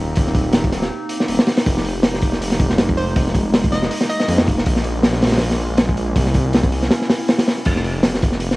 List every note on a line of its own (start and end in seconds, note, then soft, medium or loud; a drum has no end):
0.00 0.14 D#1 loud
0.00 1.62 A#3 medium
0.00 1.63 C4 medium
0.00 4.62 D#4 medium
0.00 4.62 G4 medium
0.16 0.71 D#1 loud
0.16 kick loud
0.16 open hi-hat medium
0.27 snare soft
0.35 kick loud
0.35 open hi-hat medium
0.53 snare loud
0.53 open hi-hat medium
0.64 kick medium
0.72 0.89 D#1 loud
0.72 snare soft
0.72 open hi-hat medium
0.82 snare medium
1.09 open hi-hat medium
1.20 snare medium
1.28 1.38 D#1 medium
1.28 open hi-hat medium
1.39 snare loud
1.47 snare loud
1.47 open hi-hat medium
1.57 snare loud
1.57 open hi-hat medium
1.66 2.21 F1 loud
1.66 4.63 G#3 medium
1.66 7.62 A#3 medium
1.66 kick loud
1.66 open hi-hat medium
1.77 snare soft
1.85 open hi-hat medium
2.03 snare loud
2.03 open hi-hat medium
2.14 snare medium
2.22 2.39 F1 loud
2.22 kick medium
2.22 open hi-hat medium
2.33 snare soft
2.41 2.68 F1 loud
2.41 open hi-hat loud
2.52 snare soft
2.60 kick loud
2.60 open hi-hat medium
2.70 3.14 F1 loud
2.70 snare medium
2.78 snare loud
2.78 open hi-hat medium
2.89 kick loud
2.97 3.50 C5 medium
2.97 open hi-hat medium
3.16 3.71 F1 loud
3.16 kick loud
3.16 open hi-hat medium
3.27 snare soft
3.34 kick medium
3.34 open hi-hat medium
3.54 snare loud
3.54 open hi-hat medium
3.64 kick loud
3.72 3.89 F1 loud
3.72 3.80 D#5 medium
3.72 snare soft
3.72 open hi-hat medium
3.82 snare medium
3.91 open hi-hat medium
4.01 snare medium
4.09 4.16 D#5 medium
4.09 open hi-hat medium
4.20 4.25 D#5 medium
4.20 snare soft
4.28 4.49 F2 loud
4.28 open hi-hat medium
4.38 snare loud
4.47 4.64 F1 loud
4.47 kick medium
4.47 open hi-hat medium
4.58 snare medium
4.66 5.21 A#1 loud
4.66 6.14 G#3 medium
4.66 7.63 C#4 medium
4.66 6.14 F4 medium
4.66 kick loud
4.66 open hi-hat medium
4.76 snare medium
4.84 open hi-hat medium
5.03 snare loud
5.03 open hi-hat medium
5.13 snare medium
5.22 5.39 A#1 loud
5.22 snare medium
5.22 open hi-hat medium
5.27 snare medium
5.27 open hi-hat medium
5.32 snare medium
5.32 open hi-hat medium
5.37 5.68 A#1 loud
5.37 snare loud
5.37 open hi-hat medium
5.41 open hi-hat medium
5.51 snare soft
5.69 6.14 A#1 loud
5.77 snare loud
5.77 open hi-hat medium
5.89 kick medium
5.97 open hi-hat medium
6.16 6.71 C2 loud
6.16 7.64 C4 medium
6.16 7.64 E4 medium
6.16 kick loud
6.16 open hi-hat medium
6.26 snare soft
6.34 kick medium
6.34 open hi-hat medium
6.53 snare loud
6.53 open hi-hat medium
6.63 kick loud
6.72 6.89 C2 loud
6.72 open hi-hat medium
6.82 snare soft
6.91 snare loud
6.91 open hi-hat medium
7.02 snare medium
7.10 snare loud
7.10 open hi-hat medium
7.28 snare loud
7.28 open hi-hat medium
7.38 snare loud
7.38 open hi-hat medium
7.48 snare loud
7.48 open hi-hat medium
7.58 snare soft
7.65 8.21 F1 loud
7.65 8.56 G#3 medium
7.65 8.56 A#3 medium
7.65 8.56 D#4 medium
7.65 8.56 G4 medium
7.65 kick loud
7.65 open hi-hat medium
7.65 crash medium
7.76 snare soft
7.84 open hi-hat medium
8.03 snare loud
8.03 open hi-hat medium
8.14 snare medium
8.22 8.39 F1 loud
8.22 kick loud
8.22 open hi-hat medium
8.32 snare soft
8.40 8.56 F1 loud
8.40 open hi-hat medium
8.51 snare medium